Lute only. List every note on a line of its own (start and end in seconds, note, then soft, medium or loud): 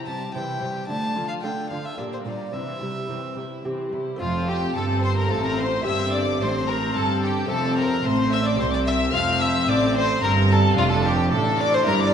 0.00 0.30 E4 soft
0.00 0.31 C5 soft
0.06 0.31 C3 soft
0.34 0.59 C3 medium
0.34 0.85 E4 soft
0.34 0.85 C5 soft
0.61 0.86 C3 soft
0.89 1.14 D3 soft
1.15 1.40 D3 soft
1.43 1.68 D3 soft
1.43 1.95 D4 soft
1.43 1.95 A4 soft
1.70 1.95 D3 soft
1.98 2.23 A#2 soft
1.98 2.50 D4 soft
1.98 2.50 G4 soft
2.26 2.51 A#2 soft
2.52 2.78 C3 soft
2.81 3.07 C3 soft
3.10 3.35 C3 soft
3.10 3.62 C4 soft
3.10 3.62 G4 soft
3.37 3.62 C3 soft
3.65 3.90 C3 soft
3.65 4.17 C4 soft
3.65 4.17 G4 soft
3.93 4.18 C3 soft
4.16 4.72 A3 medium
4.16 4.73 C4 medium
4.16 5.27 F4 medium
4.21 4.72 F2 medium
4.76 5.27 G2 medium
5.26 5.81 A3 medium
5.26 5.82 C4 medium
5.26 5.83 F4 medium
5.31 5.82 A2 medium
5.81 6.37 A#3 medium
5.81 6.38 C4 medium
5.81 7.46 G4 medium
5.86 6.37 G2 medium
6.41 6.92 A2 medium
6.96 7.47 G2 medium
7.46 8.54 A3 medium
7.46 8.54 C4 medium
7.46 8.55 A4 medium
7.50 8.01 F2 medium
8.04 8.55 A2 medium
8.55 9.10 C4 medium
8.55 9.11 G4 medium
9.10 10.18 A3 medium
9.10 10.19 C4 medium
9.10 10.74 F4 medium
9.15 9.65 F2 medium
9.69 10.19 A2 medium
10.23 10.74 G2 medium
10.74 11.82 A3 medium
10.74 11.82 D4 medium
10.74 11.84 F4 medium
10.78 11.29 F2 medium
11.32 11.83 A2 medium
11.83 12.14 G2 medium
11.83 12.14 D4 medium
11.83 12.14 E4 medium
11.83 12.14 A#4 medium